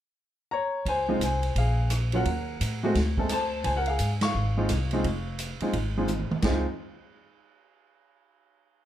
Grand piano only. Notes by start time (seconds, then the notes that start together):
0.51 C#5 A#5
0.88 C5 G#5
1.09 G#3 C4 D#4 F4
1.24 C5 G#5
1.58 G#4 F5
2.13 F#3 A#3 C#4 F4 A#4 F#5
2.83 G#3 A3 C4 F#4
3.18 G#3 A3 C4 A4
3.32 C5 A5
3.64 C5 G#5
3.77 A#4 F#5
3.87 G#4 F5
4.23 F5 C#6
4.57 G#3 C4 D#4 F4
4.93 G#3 C4 D#4 F4
5.62 G#3 C4 D#4 F4
5.97 G#3 C4 D#4 F4
6.44 G#3 C4 D#4 F4